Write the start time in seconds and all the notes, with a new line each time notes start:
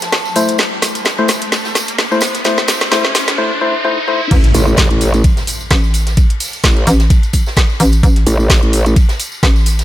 Already playing: E4 A4 C5 A5, riser
0.02 snare, closed hi-hat, tambourine
0.12 snare, closed hi-hat, ride, tambourine
0.25 tambourine
0.36 A3 E4 C5, open hi-hat, ride, tambourine
0.48 closed hi-hat, tambourine
0.58 snare, closed hi-hat, ride, tambourine
0.72 snare
0.82 snare, open hi-hat, ride, tambourine
0.95 closed hi-hat, tambourine
1.05 snare, closed hi-hat, ride, tambourine
1.18 A3 E4 C5, ride
1.28 snare, open hi-hat, ride, tambourine
1.42 closed hi-hat
1.52 snare, closed hi-hat, ride, tambourine
1.65 snare, tambourine
1.75 snare, open hi-hat, ride, tambourine
1.88 closed hi-hat, tambourine
1.98 snare, closed hi-hat, ride, tambourine
2.11 A3 E4 C5, tambourine
2.21 snare, open hi-hat, ride, tambourine
2.34 snare, closed hi-hat, tambourine
2.44 A3 E4 C5, snare, closed hi-hat, ride, tambourine
2.58 snare, tambourine
2.68 snare, open hi-hat, tambourine
2.81 snare, closed hi-hat, tambourine
2.91 A3 E4 C5, snare, closed hi-hat, ride, tambourine
3.05 snare
3.15 snare, open hi-hat, ride, tambourine
3.28 snare, closed hi-hat, tambourine
3.38 A3 E4 C5
3.61 A3 E4 C5
3.84 A3 E4 C5
4.08 A3 E4 C5
4.31 A1, kick, closed hi-hat, ride, tambourine, crash, impact
4.44 snare, closed hi-hat
4.54 A1, open hi-hat, ride, tambourine
4.67 tambourine
4.77 kick, snare, closed hi-hat, ride, tambourine
4.91 A1, closed hi-hat, ride
5.01 open hi-hat, ride, tambourine
5.14 closed hi-hat, tambourine
5.24 kick, closed hi-hat, ride, tambourine
5.37 snare, closed hi-hat, tambourine
5.47 open hi-hat, ride, tambourine
5.61 tambourine
5.71 A1, kick, snare, closed hi-hat, ride, tambourine
5.84 tambourine
5.94 open hi-hat, ride, tambourine
6.07 snare, closed hi-hat, tambourine
6.17 kick, closed hi-hat, ride, tambourine
6.30 closed hi-hat
6.40 open hi-hat, tambourine
6.53 closed hi-hat, tambourine
6.64 A1, kick, snare, closed hi-hat, tambourine
6.77 closed hi-hat
6.87 A1, open hi-hat, ride, tambourine
6.99 snare, closed hi-hat, tambourine
7.10 kick, closed hi-hat, ride, tambourine
7.23 closed hi-hat, tambourine
7.33 kick, open hi-hat, ride, tambourine
7.46 snare, tambourine
7.56 kick, snare, closed hi-hat, ride, tambourine
7.70 tambourine
7.80 A1, open hi-hat, ride, tambourine
7.92 closed hi-hat, tambourine
8.03 A1, kick, closed hi-hat, ride, tambourine
8.16 snare, closed hi-hat
8.26 A1, open hi-hat, ride, tambourine
8.40 tambourine
8.49 kick, snare, closed hi-hat, ride, tambourine
8.63 A1, closed hi-hat, ride
8.73 open hi-hat, ride, tambourine
8.86 closed hi-hat, tambourine
8.96 kick, closed hi-hat, ride, tambourine
9.09 snare, closed hi-hat, tambourine
9.19 open hi-hat, ride, tambourine
9.32 tambourine
9.43 A1, kick, snare, closed hi-hat, ride, tambourine
9.56 tambourine
9.66 open hi-hat, ride, tambourine
9.79 snare, closed hi-hat, tambourine